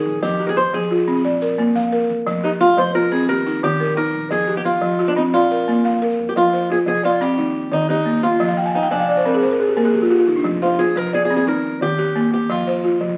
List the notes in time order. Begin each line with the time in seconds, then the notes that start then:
Already playing: D#4 G#4 A#4
0.05 A#1, shaker
0.22 F2 F3 G4, shaker
0.31 shaker
0.40 G4
0.47 G#4 A#4
0.57 F2 C5, shaker
0.74 F2 F3 G#4
0.82 shaker
0.91 F4
1.08 C2 C4
1.16 shaker
1.24 A#1 D5
1.34 shaker
1.42 A#4, shaker
1.58 A#3, shaker
1.75 F2 F5, shaker
1.85 shaker
1.92 A#4
2.02 shaker
2.09 F2, shaker
2.27 F1 F3, shaker
2.36 shaker
2.44 D#4 G4
2.60 F1 F4, shaker
2.77 F1 F3 C5
2.87 shaker
2.95 F4 A#4
3.11 F2 C4 G#4
3.21 shaker
3.29 D#2 G4 A#4
3.38 shaker
3.47 D#4, shaker
3.63 D#3 G4, shaker
3.80 A#1 A#4, shaker
3.89 shaker
3.97 D#4 A#4
4.06 shaker
4.14 A#1
4.31 F2 F3 G#4, shaker
4.40 shaker
4.47 G4
4.57 G4
4.65 F2 F4, shaker
4.74 shaker
4.82 F2 F3
4.99 F4, shaker
5.08 D4
5.16 F3 C4 D#4, shaker
5.26 shaker
5.33 A#1 F4 D5
5.51 A#4, shaker
5.67 A#3, shaker
5.84 F2 F5, shaker
6.02 A#4
6.10 shaker
6.19 F2
6.28 G4, shaker
6.36 F2 F3 F4
6.53 C5
6.70 F4 G#4
6.86 C2 F3 G#4
7.03 F4 D5
7.21 C4 G4
7.38 D#2 D#4
7.72 D#3 D#4
7.89 D#2 D#4 G4
8.06 A#3
8.23 D#2 F4
8.40 F2 F3 D#5
8.48 F5
8.57 G5
8.66 G#5
8.75 D#4 F5
8.83 G5
8.91 C2 F3 D4 G#5
9.00 F5
9.09 D5
9.17 C5
9.25 C4 A#4
9.34 G#4
9.42 A#1 C5
9.51 A#4
9.60 G#4
9.69 G4
9.77 A#3 A#4
9.85 G#4
9.93 A#1 G4
10.02 F4
10.10 F4 G4
10.19 F4
10.27 G1 D#4
10.36 D4
10.44 F1 F3
10.62 F4 C5
10.79 F4 G#4
10.96 C2 F3 A#4
11.13 G#4 D5
11.25 G#4
11.30 C4
11.36 G#4
11.47 D#2 D#4 A#4
11.81 D#3 G4
11.99 D#2 G4
12.16 A#3
12.32 D#2 G4
12.50 F2 F3 F4
12.67 C5
12.84 F4
13.01 C2 F3